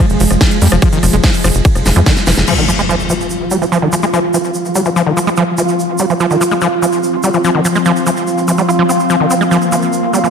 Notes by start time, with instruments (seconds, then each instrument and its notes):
Already playing: synth texture F3 G#3
0.10 analog synth bass F1, closed hi-hat
0.20 analog synth bass F1, acid bass F3, open hi-hat, shaker
0.30 analog synth bass F1, cross-stick, closed hi-hat, shaker
0.41 kick, snare, closed hi-hat, ride, shaker
0.51 closed hi-hat
0.62 analog synth bass F2, acid bass G3, open hi-hat, shaker
0.72 analog synth bass F1, acid bass F3, cross-stick, closed hi-hat, shaker
0.82 acid bass F3, kick, closed hi-hat, ride, shaker
0.92 acid bass D#3, closed hi-hat, shaker
1.03 analog synth bass F1, acid bass F3, cross-stick, open hi-hat, shaker
1.13 analog synth bass F1, acid bass G#3, closed hi-hat, shaker
1.23 acid bass F3, kick, snare, closed hi-hat, ride, shaker
1.34 open hi-hat, shaker
1.44 analog synth bass F1, acid bass F3, cross-stick, open hi-hat, shaker
1.55 analog synth bass F1, closed hi-hat, shaker
1.65 kick, closed hi-hat, ride, shaker
1.75 analog synth bass F1, cross-stick, closed hi-hat, shaker
1.86 analog synth bass F1, acid bass F3, snare, open hi-hat, shaker
1.96 analog synth bass F2, acid bass F3, closed hi-hat, shaker
2.06 acid bass D#3, kick, snare, closed hi-hat, ride, shaker
2.17 snare, closed hi-hat, shaker
2.26 analog synth bass F1, acid bass F3, snare, open hi-hat, shaker
2.37 analog synth bass F1, snare, closed hi-hat, shaker
2.47 acid bass F3, synth texture F3 F4, ambient pad C4, crash, impact, shaker
2.58 acid bass D#3
2.68 acid bass F3, shaker
2.75 acid bass G#3, ambient pad F4 C6, shaker
2.89 acid bass F3, shaker
3.00 shaker
3.10 acid bass F3, shaker
3.21 shaker
3.26 ambient pad F5, shaker
3.51 acid bass G3, shaker
3.62 acid bass F3, shaker
3.72 acid bass F3, shaker
3.82 acid bass D#3
3.92 acid bass F3, shaker
4.02 acid bass G#3, shaker
4.13 acid bass F3, shaker
4.34 acid bass F3, shaker
4.44 shaker
4.54 shaker
4.65 shaker
4.75 acid bass G3, shaker
4.85 acid bass F3, shaker
4.96 acid bass F3, shaker
5.06 acid bass D#3
5.17 acid bass F3, shaker
5.27 acid bass G#3, shaker
5.37 acid bass F3, shaker
5.58 acid bass F3, shaker
5.68 shaker
5.80 shaker
5.98 acid bass G3, shaker
6.10 acid bass F3, shaker
6.20 acid bass F3, shaker
6.31 acid bass D#3, shaker
6.41 acid bass F3, shaker
6.51 acid bass G#3, shaker
6.61 acid bass F3, shaker
6.82 acid bass F3, shaker
6.92 shaker
7.03 shaker
7.23 acid bass G3, shaker
7.33 acid bass F3, shaker
7.44 acid bass F3, shaker
7.55 acid bass D#3
7.65 acid bass F3, shaker
7.75 acid bass G#3, shaker
7.85 acid bass F3, shaker
7.96 shaker
8.06 acid bass F3, shaker
8.17 shaker
8.27 shaker
8.38 shaker
8.48 acid bass F3, shaker
8.58 acid bass G3, shaker
8.68 acid bass F4, shaker
8.79 acid bass F3
8.89 acid bass C4, shaker
9.00 shaker
9.10 acid bass F3, synth texture A#3, shaker
9.20 acid bass D#3
9.31 acid bass C4, shaker
9.41 acid bass G#3, shaker
9.51 acid bass F3, shaker
9.62 shaker
9.72 acid bass F3, shaker
9.82 shaker
9.93 shaker
10.13 acid bass G3, shaker
10.24 acid bass F3, shaker